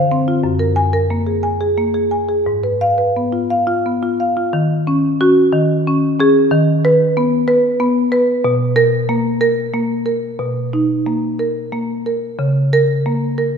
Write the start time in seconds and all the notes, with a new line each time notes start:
Already playing: D3 C5
0.12 C4
0.28 F4
0.44 F#2
0.59 A#4
0.76 G#5
0.93 A#4
1.10 A#3
1.27 G#4
1.43 G#5
1.61 G#4
1.78 A#3
1.94 G#4
2.11 G#5
2.29 G#4
2.46 G#2
2.64 B4
2.81 F5
2.98 B4
3.16 B3
3.32 F4
3.50 F5
3.67 F4
3.86 B3
4.03 F4
4.20 F5
4.37 F4
4.53 D#3
4.87 C#4
5.20 C#4 F#4
5.53 D#3
5.87 C#4
6.20 C#4 G#4
6.51 D#3
6.85 B4
7.17 B3
7.48 B4
7.80 B3
8.12 B4
8.45 B2
8.76 A#4
9.09 A#3
9.41 A#4
9.73 A#3
10.06 A#4
10.39 B2
10.73 D#4
11.06 A#3
11.39 A#4
11.72 A#3
12.06 A#4
12.39 C#3
12.73 A#4
13.06 A#3
13.38 A#4